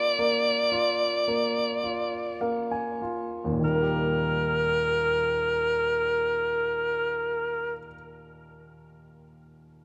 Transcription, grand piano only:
0.00 0.17 A#3 soft
0.00 0.70 F4 soft
0.19 1.26 A#3 soft
0.72 1.82 F4 soft
1.28 2.40 A#3 soft
1.84 3.00 F4 soft
2.41 3.59 A#3 soft
2.41 2.69 F5 soft
2.71 3.59 G#5 soft
3.02 3.61 F4 soft
3.44 7.56 D#2 soft
3.52 7.63 A#2 soft
3.59 7.71 D#3 soft
3.67 7.79 G3 soft
3.75 7.86 A#3 soft
3.82 7.94 G4 soft

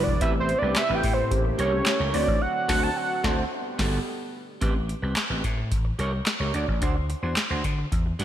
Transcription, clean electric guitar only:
0.07 muted clean electric guitar stroke soft
0.21 0.35 C4 medium
0.21 0.35 G4 medium
0.21 0.34 B4 medium
0.35 muted clean electric guitar stroke soft
0.48 muted clean electric guitar stroke soft
0.62 0.74 C4 medium
0.62 0.73 G4 medium
0.62 0.73 B4 medium
0.76 muted clean electric guitar stroke soft
0.89 1.02 C4 medium
0.89 1.03 G4 medium
0.89 1.03 B4 medium
1.03 muted clean electric guitar stroke soft
1.17 muted clean electric guitar stroke soft
1.45 muted clean electric guitar stroke medium
1.58 1.72 G4 medium
1.58 1.73 A#4 loud
1.58 1.71 C#5 loud
1.73 muted clean electric guitar stroke medium
1.86 muted clean electric guitar stroke soft
2.00 2.14 G4 medium
2.00 2.14 A#4 medium
2.00 2.14 C#5 medium
2.14 2.24 C4 medium
2.14 2.25 F#4 medium
2.14 2.25 B4 medium
2.28 muted clean electric guitar stroke soft
2.68 2.88 C4 loud
2.68 2.88 F#4 loud
2.68 2.87 A4 medium
3.24 3.43 C4 loud
3.24 3.43 F#4 loud
3.24 3.42 A4 medium
3.79 3.97 B3 loud
3.79 3.98 F#4 loud
3.79 3.98 A4 loud
4.61 4.75 C4 medium
4.61 4.75 G4 medium
4.61 4.74 B4 medium
4.75 muted clean electric guitar stroke medium
4.89 muted clean electric guitar stroke soft
5.02 5.14 C4 soft
5.02 5.14 G4 medium
5.02 5.13 B4 soft
5.30 5.42 C4 soft
5.30 5.43 G4 medium
5.30 5.44 B4 medium
5.44 muted clean electric guitar stroke soft
5.58 muted clean electric guitar stroke soft
5.85 muted clean electric guitar stroke soft
5.99 6.13 G4 medium
5.99 6.13 A#4 medium
5.99 6.11 C#5 medium
6.13 muted clean electric guitar stroke soft
6.26 muted clean electric guitar stroke soft
6.40 6.54 G4 medium
6.40 6.54 A#4 medium
6.40 6.54 C#5 medium
6.54 6.65 D4 medium
6.54 6.65 F#4 medium
6.54 6.66 D5 medium
6.82 6.95 D4 medium
6.82 6.96 F#4 medium
6.82 6.94 C5 medium
6.96 muted clean electric guitar stroke soft
7.09 muted clean electric guitar stroke soft
7.23 7.34 D4 soft
7.23 7.34 F#4 soft
7.23 7.34 C5 medium
7.38 muted clean electric guitar stroke soft
7.51 7.63 D4 medium
7.51 7.64 F#4 medium
7.51 7.64 C5 medium
7.64 muted clean electric guitar stroke soft
7.79 muted clean electric guitar stroke soft
8.06 muted clean electric guitar stroke soft
8.19 8.25 G3 medium
8.19 8.25 D4 medium
8.19 8.25 F#4 medium

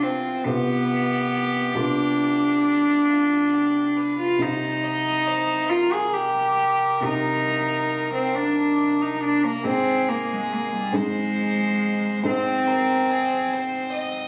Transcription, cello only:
0.03 0.46 C4 medium
0.45 1.76 B3 medium
1.75 4.18 D4 medium
4.20 4.43 F4 medium
4.42 5.71 D#4 medium
5.70 5.94 F4 medium
5.93 6.14 G#4 medium
6.13 7.06 G4 medium
7.04 8.13 D#4 medium
8.14 8.36 C4 medium
8.35 9.03 D4 medium
9.01 9.23 D#4 medium
9.24 9.46 D4 medium
9.44 9.66 A#3 medium
9.65 10.10 C4 medium
10.09 10.35 A#3 medium
10.33 10.56 G#3 medium
10.54 10.74 A#3 medium
10.76 10.96 G3 medium
10.94 12.27 G#3 medium
12.26 14.28 C4 medium

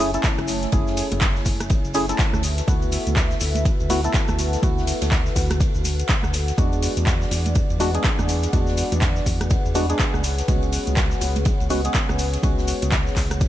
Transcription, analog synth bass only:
0.00 0.18 F#1 medium
0.38 0.67 F#1 medium
0.73 1.03 F#1 loud
1.12 1.40 F#1 medium
1.46 1.76 F#1 medium
1.85 2.13 F#1 medium
2.34 2.62 D2 medium
2.68 2.98 D2 loud
3.07 3.35 D2 medium
3.41 3.71 D2 medium
3.80 4.08 D2 medium
4.29 4.57 D2 medium
4.63 4.93 D2 loud
5.02 5.30 D2 medium
5.36 5.66 D2 medium
5.75 6.03 D2 medium
6.24 6.52 D2 medium
6.58 6.88 E2 loud
6.97 7.25 E2 medium
7.31 7.61 E2 medium
7.70 7.98 E2 medium
8.19 8.47 E2 medium
8.53 8.83 E2 loud
8.92 9.20 E2 medium
9.26 9.56 E2 medium
9.65 9.93 E2 medium
10.14 10.42 C#2 medium
10.48 10.78 C#2 loud
10.87 11.15 C#2 medium
11.21 11.51 C#2 medium
11.60 11.89 C#2 medium
12.09 12.37 C#2 medium
12.43 12.73 C#2 loud
12.82 13.11 C#2 medium
13.17 13.47 C#2 medium

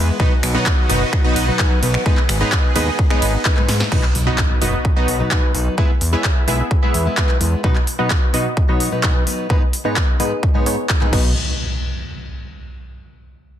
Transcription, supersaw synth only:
0.20 0.32 B3 medium
0.20 0.32 D#4 medium
0.20 0.32 F#4 medium
0.20 0.32 B4 medium
0.20 0.32 D#5 loud
0.55 0.87 B3 medium
0.55 0.87 D#4 medium
0.55 0.87 F#4 medium
0.55 0.87 B4 medium
0.55 0.87 D#5 medium
0.89 1.22 B3 medium
0.89 1.22 D#4 medium
0.89 1.22 F#4 medium
0.89 1.22 B4 medium
0.89 1.22 D#5 medium
1.24 1.56 B3 medium
1.24 1.56 D#4 medium
1.24 1.56 F#4 medium
1.24 1.57 B4 medium
1.24 1.56 D#5 loud
1.59 1.72 B3 medium
1.59 1.72 D#4 medium
1.59 1.72 F#4 medium
1.59 1.72 B4 medium
1.59 1.72 G#5 medium
2.06 2.18 B3 loud
2.06 2.18 D#4 medium
2.06 2.18 G#4 medium
2.06 2.18 B4 medium
2.06 2.18 D#5 loud
2.41 2.73 B3 medium
2.41 2.73 D#4 medium
2.41 2.73 G#4 medium
2.41 2.73 B4 medium
2.41 2.73 D#5 medium
2.76 3.08 B3 medium
2.76 3.08 D#4 medium
2.76 3.08 G#4 medium
2.76 3.08 B4 medium
2.76 3.08 D#5 medium
3.10 3.43 B3 medium
3.10 3.43 D#4 medium
3.10 3.43 G#4 medium
3.10 3.43 B4 medium
3.10 3.43 D#5 loud
3.45 3.58 B3 medium
3.45 3.58 D#4 medium
3.45 3.58 G#4 medium
3.45 3.58 B4 medium
3.45 3.58 G#5 medium
3.92 4.04 B3 medium
3.92 4.04 D#4 medium
3.92 4.04 F#4 medium
3.92 4.04 B4 medium
3.92 4.04 D#5 loud
4.27 4.59 B3 medium
4.27 4.59 D#4 medium
4.27 4.59 F#4 medium
4.27 4.59 B4 medium
4.27 4.59 D#5 medium
4.62 4.94 B3 medium
4.62 4.94 D#4 medium
4.62 4.94 F#4 medium
4.62 4.94 B4 medium
4.62 4.94 D#5 medium
4.96 5.29 B3 medium
4.96 5.29 D#4 medium
4.96 5.29 F#4 medium
4.96 5.29 B4 medium
4.96 5.29 D#5 medium
5.31 5.44 B3 medium
5.31 5.44 D#4 medium
5.31 5.44 F#4 medium
5.31 5.44 B4 medium
5.31 5.44 G#5 medium
5.78 5.91 B3 medium
5.78 5.91 E4 medium
5.78 5.91 G#4 medium
5.78 5.91 B4 medium
5.78 5.91 E5 loud
6.13 6.45 B3 medium
6.13 6.45 E4 medium
6.13 6.45 G#4 medium
6.13 6.45 B4 medium
6.13 6.45 E5 medium
6.48 6.80 B3 medium
6.48 6.80 E4 medium
6.48 6.80 G#4 medium
6.48 6.80 B4 medium
6.48 6.80 E5 medium
6.83 7.15 B3 medium
6.83 7.15 E4 medium
6.83 7.15 G#4 medium
6.83 7.15 B4 medium
6.83 7.15 E5 medium
7.17 7.30 B3 medium
7.17 7.30 E4 medium
7.17 7.30 G#4 medium
7.17 7.30 B4 medium
7.17 7.30 G#5 medium
7.64 7.77 B3 medium
7.64 7.77 D#4 medium
7.64 7.77 F#4 medium
7.64 7.77 B4 medium
7.64 7.77 D#5 loud
7.99 8.31 B3 medium
7.99 8.31 D#4 medium
7.99 8.31 F#4 medium
7.99 8.31 B4 medium
7.99 8.31 D#5 medium
8.34 8.66 B3 medium
8.34 8.66 D#4 medium
8.34 8.66 F#4 medium
8.34 8.66 B4 medium
8.34 8.66 D#5 medium
8.69 9.01 B3 medium
8.69 9.01 D#4 medium
8.69 9.01 F#4 medium
8.69 9.01 B4 medium
8.69 9.01 D#5 loud
9.04 9.16 B3 medium
9.04 9.16 D#4 medium
9.04 9.16 F#4 medium
9.04 9.16 B4 medium
9.04 9.16 G#5 medium
9.50 9.63 B3 medium
9.50 9.63 D#4 medium
9.50 9.63 G#4 medium
9.50 9.63 B4 medium
9.50 9.63 D#5 loud
9.85 10.17 B3 medium
9.85 10.17 D#4 medium
9.85 10.17 G#4 medium
9.85 10.17 B4 medium
9.85 10.17 D#5 medium
10.20 10.52 B3 medium
10.20 10.52 D#4 medium
10.20 10.52 G#4 medium
10.20 10.52 B4 medium
10.20 10.52 D#5 medium
10.55 10.64 B3 medium
10.55 10.64 D#4 medium
10.55 10.64 G#4 medium
10.55 10.64 B4 medium
10.55 10.64 D#5 loud
10.66 10.98 B3 medium
10.66 10.98 D#4 medium
10.66 10.98 G#4 medium
10.66 10.98 B4 medium
10.66 10.98 C#5 medium
11.01 11.11 B3 medium
11.01 11.11 D#4 medium
11.01 11.11 G#4 medium
11.01 11.11 B4 medium
11.01 11.11 G#5 medium
11.13 11.30 B3 medium
11.13 11.30 D#4 medium
11.13 11.30 F#4 medium
11.13 11.30 B4 medium
11.13 11.30 D#5 medium

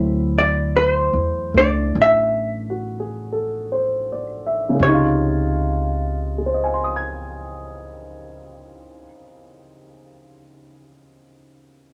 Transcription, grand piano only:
0.00 4.80 F#3 soft
0.00 1.53 A3 soft
0.00 4.81 C4 soft
0.00 4.81 E4 medium
1.54 4.81 A3 soft
1.54 4.83 D4 soft
2.70 3.09 F#4 soft
3.00 3.47 G#4 soft
3.32 4.00 A4 soft
3.72 4.33 C5 soft
4.12 4.56 D5 soft
4.46 4.98 E5 soft
4.69 8.99 C#3 medium
4.75 9.04 G#3 medium
4.81 9.11 C3 soft
4.87 9.16 D#4 medium
4.94 9.24 F4 medium
6.38 10.64 G#4 soft
6.46 10.72 C5 soft
6.54 10.80 D#5 soft
6.64 10.89 G#5 soft
6.74 10.99 C6 soft
6.84 11.09 D#6 soft
6.96 11.22 G#6 soft

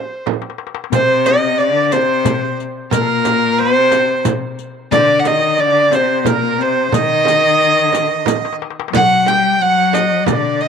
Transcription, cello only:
0.91 1.60 C3 medium
1.58 1.94 D3 medium
1.93 2.59 C3 medium
2.93 3.62 A#2 medium
3.61 4.27 C3 medium
4.92 5.28 D3 loud
5.26 5.59 D#3 medium
5.58 5.93 D3 medium
5.91 6.27 C3 medium
6.26 6.60 A#2 medium
6.58 6.93 C3 medium
6.91 8.59 D#3 medium
8.92 9.26 F#3 medium
9.25 9.51 G3 medium
9.51 9.60 G3 medium
9.59 10.28 F#3 medium
10.27 10.63 D3 medium
10.62 10.68 D#3 medium

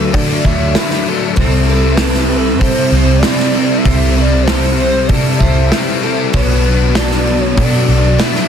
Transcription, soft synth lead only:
0.00 0.14 A4 medium
0.13 0.47 D5 loud
0.45 1.07 E5 loud
1.35 1.96 A4 medium
1.94 2.38 B4 medium
2.37 2.60 A4 medium
2.58 3.20 C5 loud
3.19 3.77 D5 medium
3.77 4.22 E5 loud
4.20 4.44 D5 loud
4.43 5.09 C5 medium
5.07 5.40 D5 loud
5.39 6.02 E5 loud
6.35 6.98 B4 medium
6.97 7.42 D5 medium
7.40 7.65 C#5 medium
7.63 8.23 D5 medium
8.21 8.48 E5 loud

